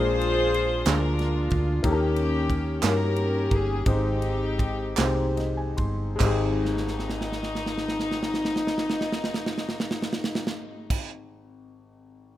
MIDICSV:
0, 0, Header, 1, 5, 480
1, 0, Start_track
1, 0, Key_signature, -4, "major"
1, 0, Tempo, 656455
1, 1348, Time_signature, 6, 3, 24, 8
1, 2319, Tempo, 712589
1, 3279, Tempo, 774194
1, 3759, Tempo, 833333
1, 4239, Tempo, 867052
1, 7655, End_track
2, 0, Start_track
2, 0, Title_t, "String section"
2, 0, Program_c, 0, 48
2, 0, Note_on_c, 0, 65, 88
2, 0, Note_on_c, 0, 68, 88
2, 0, Note_on_c, 0, 72, 119
2, 609, Note_off_c, 0, 68, 0
2, 610, Note_off_c, 0, 65, 0
2, 644, Note_off_c, 0, 72, 0
2, 654, Note_on_c, 0, 65, 74
2, 657, Note_on_c, 0, 62, 68
2, 659, Note_on_c, 0, 70, 98
2, 1182, Note_off_c, 0, 70, 0
2, 1329, Note_off_c, 0, 65, 0
2, 1330, Note_off_c, 0, 62, 0
2, 1364, Note_on_c, 0, 61, 80
2, 1371, Note_on_c, 0, 58, 77
2, 1372, Note_on_c, 0, 67, 105
2, 2051, Note_off_c, 0, 61, 0
2, 2055, Note_off_c, 0, 58, 0
2, 2055, Note_off_c, 0, 67, 0
2, 2093, Note_on_c, 0, 67, 66
2, 2094, Note_on_c, 0, 61, 70
2, 2097, Note_on_c, 0, 70, 93
2, 2563, Note_off_c, 0, 70, 0
2, 2564, Note_on_c, 0, 68, 90
2, 2771, Note_off_c, 0, 61, 0
2, 2771, Note_off_c, 0, 67, 0
2, 2788, Note_on_c, 0, 63, 69
2, 2791, Note_on_c, 0, 60, 67
2, 2792, Note_on_c, 0, 67, 91
2, 2795, Note_off_c, 0, 68, 0
2, 3735, Note_off_c, 0, 63, 0
2, 3736, Note_off_c, 0, 60, 0
2, 3737, Note_off_c, 0, 67, 0
2, 4248, Note_on_c, 0, 63, 104
2, 6917, Note_off_c, 0, 63, 0
2, 7655, End_track
3, 0, Start_track
3, 0, Title_t, "Grand piano"
3, 0, Program_c, 1, 0
3, 0, Note_on_c, 1, 46, 72
3, 0, Note_on_c, 1, 56, 88
3, 0, Note_on_c, 1, 58, 77
3, 0, Note_on_c, 1, 62, 76
3, 0, Note_on_c, 1, 65, 78
3, 0, Note_on_c, 1, 68, 95
3, 49, Control_c, 1, 64, 127
3, 423, Note_off_c, 1, 56, 0
3, 425, Note_off_c, 1, 58, 0
3, 428, Note_off_c, 1, 62, 0
3, 430, Note_off_c, 1, 65, 0
3, 432, Note_off_c, 1, 68, 0
3, 608, Note_off_c, 1, 46, 0
3, 628, Note_on_c, 1, 56, 70
3, 633, Note_on_c, 1, 58, 66
3, 636, Note_on_c, 1, 62, 64
3, 642, Note_on_c, 1, 65, 67
3, 645, Note_on_c, 1, 68, 75
3, 1137, Note_off_c, 1, 56, 0
3, 1139, Note_off_c, 1, 58, 0
3, 1141, Note_off_c, 1, 62, 0
3, 1144, Note_off_c, 1, 65, 0
3, 1145, Note_off_c, 1, 68, 0
3, 1336, Note_on_c, 1, 58, 87
3, 1342, Note_on_c, 1, 61, 79
3, 1346, Note_on_c, 1, 51, 75
3, 1348, Note_on_c, 1, 63, 83
3, 1353, Note_on_c, 1, 67, 80
3, 1353, Note_on_c, 1, 69, 74
3, 1357, Control_c, 1, 64, 0
3, 1398, Note_off_c, 1, 69, 0
3, 1403, Note_on_c, 1, 70, 97
3, 1484, Control_c, 1, 64, 127
3, 1853, Note_off_c, 1, 58, 0
3, 1855, Note_off_c, 1, 61, 0
3, 1859, Note_off_c, 1, 63, 0
3, 1861, Note_off_c, 1, 67, 0
3, 1886, Note_off_c, 1, 70, 0
3, 2042, Note_off_c, 1, 51, 0
3, 2063, Note_on_c, 1, 58, 68
3, 2063, Note_on_c, 1, 61, 66
3, 2072, Note_on_c, 1, 63, 64
3, 2074, Note_on_c, 1, 66, 50
3, 2077, Note_on_c, 1, 70, 73
3, 2119, Note_on_c, 1, 67, 63
3, 2122, Note_off_c, 1, 66, 0
3, 2576, Note_off_c, 1, 58, 0
3, 2576, Note_off_c, 1, 61, 0
3, 2580, Note_off_c, 1, 63, 0
3, 2583, Note_off_c, 1, 70, 0
3, 2602, Note_off_c, 1, 67, 0
3, 2785, Note_on_c, 1, 56, 79
3, 2789, Note_on_c, 1, 60, 72
3, 2791, Note_on_c, 1, 44, 66
3, 2793, Note_on_c, 1, 63, 80
3, 2797, Control_c, 1, 64, 0
3, 2797, Note_on_c, 1, 72, 88
3, 2798, Note_on_c, 1, 67, 77
3, 2930, Control_c, 1, 64, 127
3, 3307, Note_off_c, 1, 56, 0
3, 3309, Note_off_c, 1, 60, 0
3, 3310, Note_off_c, 1, 63, 0
3, 3312, Note_off_c, 1, 67, 0
3, 3312, Note_off_c, 1, 72, 0
3, 3492, Note_off_c, 1, 44, 0
3, 3508, Note_on_c, 1, 56, 76
3, 3514, Note_on_c, 1, 60, 69
3, 3515, Note_on_c, 1, 63, 73
3, 3519, Note_on_c, 1, 67, 75
3, 3522, Note_on_c, 1, 72, 92
3, 3756, Note_on_c, 1, 75, 66
3, 3866, Note_off_c, 1, 75, 0
3, 3875, Note_on_c, 1, 80, 68
3, 3986, Note_off_c, 1, 80, 0
3, 3989, Note_on_c, 1, 84, 69
3, 4021, Note_off_c, 1, 56, 0
3, 4023, Note_off_c, 1, 60, 0
3, 4024, Note_off_c, 1, 63, 0
3, 4026, Note_off_c, 1, 67, 0
3, 4027, Note_off_c, 1, 72, 0
3, 4212, Note_on_c, 1, 56, 90
3, 4219, Note_off_c, 1, 84, 0
3, 4225, Note_on_c, 1, 60, 77
3, 4238, Note_on_c, 1, 32, 88
3, 4239, Note_on_c, 1, 63, 76
3, 4246, Control_c, 1, 64, 0
3, 4251, Note_on_c, 1, 67, 78
3, 4264, Note_on_c, 1, 68, 96
3, 4349, Control_c, 1, 64, 127
3, 6899, Note_off_c, 1, 56, 0
3, 6906, Note_off_c, 1, 60, 0
3, 6912, Note_off_c, 1, 32, 0
3, 6912, Note_off_c, 1, 63, 0
3, 6918, Note_off_c, 1, 67, 0
3, 6925, Note_off_c, 1, 68, 0
3, 7655, End_track
4, 0, Start_track
4, 0, Title_t, "Fingered electric bass"
4, 0, Program_c, 2, 33
4, 0, Note_on_c, 2, 34, 115
4, 604, Note_off_c, 2, 34, 0
4, 629, Note_on_c, 2, 38, 96
4, 1078, Note_off_c, 2, 38, 0
4, 1109, Note_on_c, 2, 38, 97
4, 1329, Note_off_c, 2, 38, 0
4, 1342, Note_on_c, 2, 39, 99
4, 2040, Note_off_c, 2, 39, 0
4, 2069, Note_on_c, 2, 43, 91
4, 2523, Note_off_c, 2, 43, 0
4, 2550, Note_on_c, 2, 31, 88
4, 2768, Note_off_c, 2, 31, 0
4, 2785, Note_on_c, 2, 32, 103
4, 3489, Note_off_c, 2, 32, 0
4, 3516, Note_on_c, 2, 36, 92
4, 3972, Note_off_c, 2, 36, 0
4, 3993, Note_on_c, 2, 31, 87
4, 4219, Note_off_c, 2, 31, 0
4, 4240, Note_on_c, 2, 32, 96
4, 6913, Note_off_c, 2, 32, 0
4, 7655, End_track
5, 0, Start_track
5, 0, Title_t, "Drums"
5, 156, Note_on_c, 9, 51, 50
5, 229, Note_off_c, 9, 51, 0
5, 397, Note_on_c, 9, 51, 49
5, 470, Note_off_c, 9, 51, 0
5, 625, Note_on_c, 9, 51, 82
5, 635, Note_on_c, 9, 38, 115
5, 635, Note_on_c, 9, 39, 98
5, 699, Note_off_c, 9, 51, 0
5, 708, Note_off_c, 9, 38, 0
5, 708, Note_off_c, 9, 39, 0
5, 869, Note_on_c, 9, 51, 43
5, 881, Note_on_c, 9, 38, 33
5, 943, Note_off_c, 9, 51, 0
5, 954, Note_off_c, 9, 38, 0
5, 1100, Note_on_c, 9, 51, 48
5, 1109, Note_on_c, 9, 36, 99
5, 1173, Note_off_c, 9, 51, 0
5, 1182, Note_off_c, 9, 36, 0
5, 1344, Note_on_c, 9, 51, 77
5, 1345, Note_on_c, 9, 36, 118
5, 1418, Note_off_c, 9, 36, 0
5, 1418, Note_off_c, 9, 51, 0
5, 1582, Note_on_c, 9, 51, 50
5, 1655, Note_off_c, 9, 51, 0
5, 1825, Note_on_c, 9, 36, 93
5, 1829, Note_on_c, 9, 51, 47
5, 1898, Note_off_c, 9, 36, 0
5, 1902, Note_off_c, 9, 51, 0
5, 2065, Note_on_c, 9, 51, 80
5, 2068, Note_on_c, 9, 39, 95
5, 2075, Note_on_c, 9, 38, 119
5, 2138, Note_off_c, 9, 51, 0
5, 2141, Note_off_c, 9, 39, 0
5, 2148, Note_off_c, 9, 38, 0
5, 2313, Note_on_c, 9, 51, 44
5, 2381, Note_off_c, 9, 51, 0
5, 2548, Note_on_c, 9, 51, 45
5, 2549, Note_on_c, 9, 36, 95
5, 2616, Note_off_c, 9, 51, 0
5, 2617, Note_off_c, 9, 36, 0
5, 2782, Note_on_c, 9, 51, 74
5, 2784, Note_on_c, 9, 36, 120
5, 2850, Note_off_c, 9, 51, 0
5, 2852, Note_off_c, 9, 36, 0
5, 3025, Note_on_c, 9, 51, 47
5, 3093, Note_off_c, 9, 51, 0
5, 3276, Note_on_c, 9, 36, 93
5, 3280, Note_on_c, 9, 51, 47
5, 3339, Note_off_c, 9, 36, 0
5, 3342, Note_off_c, 9, 51, 0
5, 3511, Note_on_c, 9, 39, 97
5, 3512, Note_on_c, 9, 51, 85
5, 3520, Note_on_c, 9, 38, 113
5, 3573, Note_off_c, 9, 39, 0
5, 3574, Note_off_c, 9, 51, 0
5, 3582, Note_off_c, 9, 38, 0
5, 3760, Note_on_c, 9, 51, 44
5, 3769, Note_on_c, 9, 38, 35
5, 3817, Note_off_c, 9, 51, 0
5, 3827, Note_off_c, 9, 38, 0
5, 3992, Note_on_c, 9, 51, 48
5, 3996, Note_on_c, 9, 36, 96
5, 4049, Note_off_c, 9, 51, 0
5, 4053, Note_off_c, 9, 36, 0
5, 4235, Note_on_c, 9, 39, 78
5, 4239, Note_on_c, 9, 36, 113
5, 4240, Note_on_c, 9, 49, 94
5, 4291, Note_off_c, 9, 39, 0
5, 4295, Note_off_c, 9, 36, 0
5, 4296, Note_off_c, 9, 49, 0
5, 4487, Note_on_c, 9, 38, 47
5, 4543, Note_off_c, 9, 38, 0
5, 4553, Note_on_c, 9, 38, 52
5, 4609, Note_off_c, 9, 38, 0
5, 4611, Note_on_c, 9, 38, 48
5, 4667, Note_off_c, 9, 38, 0
5, 4674, Note_on_c, 9, 38, 46
5, 4729, Note_off_c, 9, 38, 0
5, 4732, Note_on_c, 9, 38, 58
5, 4787, Note_off_c, 9, 38, 0
5, 4795, Note_on_c, 9, 38, 58
5, 4851, Note_off_c, 9, 38, 0
5, 4858, Note_on_c, 9, 38, 53
5, 4913, Note_off_c, 9, 38, 0
5, 4918, Note_on_c, 9, 38, 55
5, 4973, Note_off_c, 9, 38, 0
5, 4985, Note_on_c, 9, 38, 60
5, 5041, Note_off_c, 9, 38, 0
5, 5047, Note_on_c, 9, 38, 63
5, 5102, Note_off_c, 9, 38, 0
5, 5109, Note_on_c, 9, 38, 61
5, 5164, Note_off_c, 9, 38, 0
5, 5169, Note_on_c, 9, 38, 65
5, 5224, Note_off_c, 9, 38, 0
5, 5231, Note_on_c, 9, 38, 64
5, 5286, Note_off_c, 9, 38, 0
5, 5296, Note_on_c, 9, 38, 65
5, 5352, Note_off_c, 9, 38, 0
5, 5359, Note_on_c, 9, 38, 74
5, 5414, Note_off_c, 9, 38, 0
5, 5421, Note_on_c, 9, 38, 68
5, 5476, Note_off_c, 9, 38, 0
5, 5482, Note_on_c, 9, 38, 70
5, 5537, Note_off_c, 9, 38, 0
5, 5543, Note_on_c, 9, 38, 70
5, 5598, Note_off_c, 9, 38, 0
5, 5605, Note_on_c, 9, 38, 73
5, 5660, Note_off_c, 9, 38, 0
5, 5664, Note_on_c, 9, 38, 74
5, 5719, Note_off_c, 9, 38, 0
5, 5729, Note_on_c, 9, 38, 83
5, 5785, Note_off_c, 9, 38, 0
5, 5792, Note_on_c, 9, 38, 74
5, 5847, Note_off_c, 9, 38, 0
5, 5856, Note_on_c, 9, 38, 84
5, 5911, Note_off_c, 9, 38, 0
5, 5919, Note_on_c, 9, 38, 83
5, 5974, Note_off_c, 9, 38, 0
5, 5977, Note_on_c, 9, 38, 85
5, 6032, Note_off_c, 9, 38, 0
5, 6043, Note_on_c, 9, 38, 85
5, 6099, Note_off_c, 9, 38, 0
5, 6106, Note_on_c, 9, 38, 75
5, 6161, Note_off_c, 9, 38, 0
5, 6167, Note_on_c, 9, 38, 72
5, 6222, Note_off_c, 9, 38, 0
5, 6229, Note_on_c, 9, 38, 90
5, 6285, Note_off_c, 9, 38, 0
5, 6290, Note_on_c, 9, 38, 89
5, 6345, Note_off_c, 9, 38, 0
5, 6354, Note_on_c, 9, 38, 86
5, 6409, Note_off_c, 9, 38, 0
5, 6411, Note_on_c, 9, 38, 91
5, 6466, Note_off_c, 9, 38, 0
5, 6473, Note_on_c, 9, 38, 91
5, 6529, Note_off_c, 9, 38, 0
5, 6536, Note_on_c, 9, 38, 96
5, 6591, Note_off_c, 9, 38, 0
5, 6600, Note_on_c, 9, 38, 101
5, 6655, Note_off_c, 9, 38, 0
5, 6840, Note_on_c, 9, 36, 111
5, 6841, Note_on_c, 9, 49, 108
5, 6895, Note_off_c, 9, 36, 0
5, 6896, Note_off_c, 9, 49, 0
5, 7655, End_track
0, 0, End_of_file